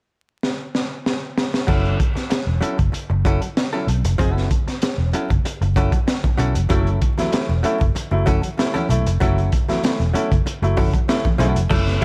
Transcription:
0.43 snare
0.75 snare
1.06 snare
1.38 snare
1.54 snare
1.67 F#1 F#3 C#4 E4 A4, kick, crash
1.85 closed hi-hat
2.00 kick, closed hi-hat
2.15 muted hollow-body jazz guitar stroke, muted fingered electric bass stroke, snare, closed hi-hat
2.30 muted hollow-body jazz guitar stroke, snare, closed hi-hat
2.47 E1
2.61 F#3 C#4 E4 A4, closed hi-hat
2.78 F#1, muted hollow-body jazz guitar stroke, kick, closed hi-hat
2.92 muted hollow-body jazz guitar stroke, closed hi-hat
3.10 F#1, muted hollow-body jazz guitar stroke
3.25 F#3 C#4 E4 A4, kick, closed hi-hat
3.42 muted hollow-body jazz guitar stroke, closed hi-hat
3.57 muted hollow-body jazz guitar stroke, snare, closed hi-hat
3.73 F#3 C#4 E4 A4
3.87 B1, muted hollow-body jazz guitar stroke, closed hi-hat
4.04 F1, muted hollow-body jazz guitar stroke, closed hi-hat
4.18 F#1 F3 C4 D#4 G#4, kick, closed hi-hat
4.30 F#3 C#4 E4 A4
4.37 snare
4.51 kick, closed hi-hat
4.67 muted fingered electric bass stroke, muted hollow-body jazz guitar stroke, snare, closed hi-hat
4.82 muted hollow-body jazz guitar stroke, snare, closed hi-hat
4.98 E1
5.13 F#3 C#4 E4 A4, closed hi-hat
5.30 F#1, muted hollow-body jazz guitar stroke, kick, closed hi-hat
5.44 muted fingered electric bass stroke, muted hollow-body jazz guitar stroke, closed hi-hat
5.61 F#1, muted hollow-body jazz guitar stroke, closed hi-hat
5.76 F#3 C#4 E4 A4, kick, closed hi-hat
5.92 muted hollow-body jazz guitar stroke, kick, closed hi-hat
6.07 muted hollow-body jazz guitar stroke, snare, closed hi-hat
6.24 muted hollow-body jazz guitar stroke, kick, closed hi-hat
6.38 B1 F#3 C#4 E4 A4, closed hi-hat
6.55 F1, muted hollow-body jazz guitar stroke, closed hi-hat
6.69 F#1 F#3 A3 C#4 E4 A4, kick, closed hi-hat, muted conga, low conga
6.87 closed hi-hat
7.02 kick, closed hi-hat
7.18 F#3 A3 E4, muted hollow-body jazz guitar stroke, muted fingered electric bass stroke, snare, closed hi-hat, high conga
7.32 A3 E4, muted hollow-body jazz guitar stroke, snare, closed hi-hat
7.49 E1, muted conga
7.63 F#3 A3 C#4 E4 A4, closed hi-hat
7.80 F#1, muted hollow-body jazz guitar stroke, kick, closed hi-hat
7.95 muted hollow-body jazz guitar stroke, closed hi-hat, muted conga
8.11 F#1 F#3 A3 E4, muted hollow-body jazz guitar stroke, muted conga
8.26 F#3 A3 C#4 E4 A4, kick, closed hi-hat, high conga
8.42 muted hollow-body jazz guitar stroke, closed hi-hat
8.57 A3 E4, muted hollow-body jazz guitar stroke, snare, closed hi-hat, muted conga
8.74 F#3 C#4 E4 A4, closed hi-hat, high conga
8.89 B1 A3 E4, muted hollow-body jazz guitar stroke, closed hi-hat, low conga
9.06 F1, muted hollow-body jazz guitar stroke, closed hi-hat
9.20 F#1 F#3 A3 C#4 E4 A4, kick, closed hi-hat, muted conga, low conga
9.38 closed hi-hat
9.52 kick, closed hi-hat
9.68 F#3 A3 E4, muted fingered electric bass stroke, muted hollow-body jazz guitar stroke, snare, closed hi-hat, high conga
9.83 A3 E4, muted hollow-body jazz guitar stroke, snare, closed hi-hat, muted conga
10.00 E1, closed hi-hat, muted conga
10.14 F#3 A3 C#4 E4 A4, closed hi-hat
10.31 F#1, muted hollow-body jazz guitar stroke, kick, closed hi-hat
10.45 muted fingered electric bass stroke, muted hollow-body jazz guitar stroke, closed hi-hat
10.62 F#1 F#3 A3 E4, muted hollow-body jazz guitar stroke, closed hi-hat, muted conga
10.77 F#3 A3 C#4 E4 A4, kick, open hi-hat, high conga
10.94 muted hollow-body jazz guitar stroke, kick, closed hi-hat
11.08 A3 E4, muted hollow-body jazz guitar stroke, snare, closed hi-hat, muted conga
11.25 muted hollow-body jazz guitar stroke, kick, muted conga, high conga
11.38 B1 F#3 A3 C#4 E4 A4, closed hi-hat, low conga
11.55 F1, muted hollow-body jazz guitar stroke, closed hi-hat
11.70 F#1 F#3 A3 C#4 E4 A4, kick, crash, low conga
11.87 snare, closed hi-hat, muted conga
12.01 F#3 A3

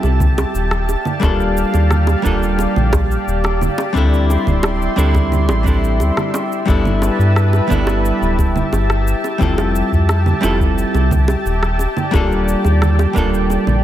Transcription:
Already playing: G3 C4 E4 F4 G4 A4 E5 A5
0.03 C2, high bongo, shaker
0.20 kick, low conga, shaker
0.38 high bongo, shaker
0.54 D#1, shaker
0.71 cross-stick, shaker
0.88 D5 F5, high bongo, shaker
1.05 low conga, shaker
1.20 D#1 G3 A#3 D4 F4, kick, high bongo, shaker
1.24 A4
1.40 shaker
1.57 shaker
1.74 D#2, high bongo, shaker
1.91 cross-stick, low conga, shaker
2.07 high bongo, shaker
2.22 D#1 G3 A#3 D4 F4, kick, shaker
2.27 A4
2.43 shaker
2.59 high bongo, shaker
2.76 A#1, low conga, shaker
2.93 kick, high bongo, shaker
3.11 shaker
3.27 D#1, shaker
3.44 cross-stick, high bongo, shaker
3.62 low conga, shaker
3.78 high bongo, shaker
3.93 D2 G3 C4 D4 E4 E5 C6, kick, shaker
3.97 A4
4.14 shaker
4.30 high bongo, shaker
4.47 D1, kick, low conga, shaker
4.63 cross-stick, high bongo, shaker
4.82 shaker
4.96 D2 G3 C4 D4 E4 A4, shaker
5.15 kick, high bongo, shaker
5.32 low conga, shaker
5.49 A1, high bongo, shaker
5.63 G3 C4 D4 E4, kick, shaker
5.68 A4
5.84 shaker
6.00 D2, high bongo, shaker
6.17 cross-stick, low conga, shaker
6.34 high bongo, shaker
6.52 shaker
6.65 G1 G3 B3 D4 E4 G4 B4 A5, kick, high bongo, shaker
6.70 A4
6.85 low conga, shaker
7.02 high bongo, shaker
7.19 G2, shaker
7.36 cross-stick, shaker
7.53 high bongo, shaker
7.68 G1 G3 B3 D4 E4, kick, low conga, shaker
7.72 A4
7.87 high bongo, shaker
8.05 shaker
8.21 D1, shaker
8.38 kick, high bongo, shaker
8.56 low conga, shaker
8.72 G1, high bongo, shaker
8.90 cross-stick, shaker
9.08 shaker
9.24 high bongo, shaker
9.38 F1 G3 C4 E4 F4, kick, low conga, shaker
9.43 A4
9.58 high bongo, shaker
9.76 shaker
9.92 F2, kick, shaker
10.09 cross-stick, high bongo, shaker
10.26 low conga, shaker
10.41 F1 G3 C4 E4 F4, high bongo, shaker
10.45 A4
10.60 kick, shaker
10.78 shaker
10.94 C2, high bongo, shaker
11.11 kick, low conga, shaker
11.28 high bongo, shaker
11.45 D#1, shaker
11.63 cross-stick, shaker
11.79 D5, high bongo, shaker
11.97 low conga, shaker
12.11 D#1 G3 A#3 D4 F4, kick, high bongo, shaker
12.16 A4
12.32 shaker
12.48 shaker
12.65 D#2, high bongo, shaker
12.82 cross-stick, low conga, shaker
12.99 high bongo, shaker
13.13 D#1 G3 A#3 D4 F4, kick, shaker
13.18 A4
13.34 shaker
13.50 high bongo, shaker
13.67 A#1, low conga, shaker

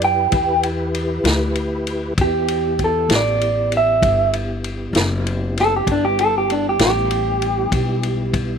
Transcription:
Already playing: F#2 E4 G4 B4
0.02 G5, ride
0.32 E2, kick, ride
0.63 ride
0.95 ride
1.24 D2, snare, ride
1.55 ride
1.87 ride
2.17 E2 B3 E4 G4, kick, ride
2.21 G4
2.48 ride
2.79 kick, ride
2.84 A4
3.09 A1, snare, ride
3.16 D5
3.41 ride
3.72 ride
3.77 E5
4.02 G1, kick, ride
4.33 ride
4.64 ride
4.93 F#1, snare, ride
5.27 ride
5.58 A4, snare, ride
5.76 G4
5.86 G1 G3 B3 E4, kick, ride
5.92 D4
6.05 G4
6.19 A4, ride
6.38 G4
6.50 D4, ride
6.69 G4
6.79 A1, snare, ride
6.85 G4
7.11 ride
7.42 ride
7.71 B1, kick, ride
8.03 ride
8.34 kick, ride

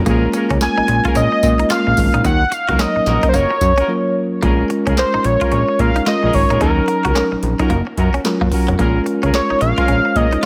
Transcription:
0.06 A#1 G#3 A#3 C#4 F4 G#4 A#4, kick, closed hi-hat, tambourine
0.14 A#4
0.33 C#4 F4 G#4 A#4, muted clean electric guitar stroke, closed hi-hat, tambourine
0.50 C#2 C#4, kick, closed hi-hat
0.61 G#5, snare, clap, closed hi-hat, tambourine
0.78 A#1 G#3 A#3 C#4 D#4 F4 A#4
0.88 A#1, muted clean electric guitar stroke, closed hi-hat
1.05 C#4 F4 G#4 A#4, kick, closed hi-hat
1.15 A#1 C#4 D#5, closed hi-hat, tambourine
1.32 muted clean electric guitar stroke
1.43 A#2 G#3 A#3 C#4 F4 A#4, kick, closed hi-hat, tambourine
1.59 D#4, closed hi-hat
1.70 F4 F5, snare, clap, closed hi-hat, tambourine
1.87 A#1, muted clean electric guitar stroke
1.97 G#1 G#3 A#3 C#4 F4 A#4, kick, open hi-hat, tambourine
2.14 A#1 D#4, closed hi-hat
2.24 D#2 D#4 F#5, kick, closed hi-hat, tambourine
2.52 F5, muted clean electric guitar stroke, closed hi-hat, tambourine
2.68 C#2 F#3 A#3 C#4 D#4 F#4 A#4, kick, closed hi-hat
2.79 C#4 D#5, snare, clap, closed hi-hat, tambourine
2.96 A#1, muted clean electric guitar stroke
3.06 A#1 C#4 D#4 F#4 A#4, snare, closed hi-hat
3.23 F#3 A#3 C#4 D#4 A#4, kick, closed hi-hat
3.29 C5
3.33 F#1 A#3 C#4 F4 F#4 A#4 C#5, closed hi-hat, tambourine
3.51 muted clean electric guitar stroke
3.61 F#2, kick, closed hi-hat, tambourine
3.77 C#4 F4 F#4 A#4, closed hi-hat
3.88 F#3 A#3 C#4 F4 A#4
4.42 A#1 G#3 A#3 C#4 F4 G#4 A#4, kick, closed hi-hat
4.70 muted clean electric guitar stroke, closed hi-hat
4.87 C#2 C#4 F4 G#4 A#4, kick, closed hi-hat
4.97 C5, snare, clap, closed hi-hat
5.14 A#1 D#4
5.24 A#1 C#5, muted clean electric guitar stroke, closed hi-hat
5.41 G#3 C#4 F4 G#4 A#4, kick, closed hi-hat
5.52 A#1 C#4, closed hi-hat
5.68 muted clean electric guitar stroke
5.79 A#2 C#4 F4 G#4 A#4 F5, kick, closed hi-hat
5.96 D#4, closed hi-hat
6.06 G#3 C#4 F4 A#4 D#5, snare, clap, closed hi-hat
6.23 A#1 C#4 F4 G#4 A#4, muted clean electric guitar stroke
6.33 G#1 G#3 C#4 F4 A#4 C#5, kick, open hi-hat
6.50 A#1 C#4 D#4 F4 G#4 A#4, closed hi-hat
6.61 D#2 F#3 C#4 D#4 F#4 A#4, kick, closed hi-hat
6.88 muted clean electric guitar stroke, closed hi-hat
7.05 C#2 C#4 D#4 F#4 A#4, kick, closed hi-hat
7.15 C#4, snare, clap, closed hi-hat
7.32 A#1, muted clean electric guitar stroke
7.43 A#1, closed hi-hat
7.59 F#3 C#4 D#4 F4 F#4 A#4, kick, closed hi-hat
7.70 F#1 A#3, closed hi-hat
7.87 muted clean electric guitar stroke
7.97 F#2 C#4 F4 F#4 A#4, kick, closed hi-hat
8.14 C#4, closed hi-hat
8.24 F#3 C#4 F4 A#4, snare, clap, closed hi-hat
8.41 F#2 A#3, kick
8.52 F#3 C#4 F4 F#4 A#4, muted clean electric guitar stroke, kick, open hi-hat
8.68 F1 F#3, closed hi-hat
8.79 A#1 G#3 A#3 C#4 F4 G#4 A#4, kick, closed hi-hat
9.06 muted clean electric guitar stroke, closed hi-hat
9.23 C#2 C#4 F4 G#4 A#4, kick, closed hi-hat
9.34 C#5, snare, clap, closed hi-hat
9.50 A#1 D#4
9.61 A#1 F5, muted clean electric guitar stroke, closed hi-hat
9.77 G#3 C#4 F4 G#4 A#4 C5, kick, closed hi-hat
9.85 A#1 C#4 C#5, closed hi-hat
10.05 muted clean electric guitar stroke
10.15 A#2 C#4 F4 G#4 A#4 D#5, kick, closed hi-hat
10.32 D#4, closed hi-hat

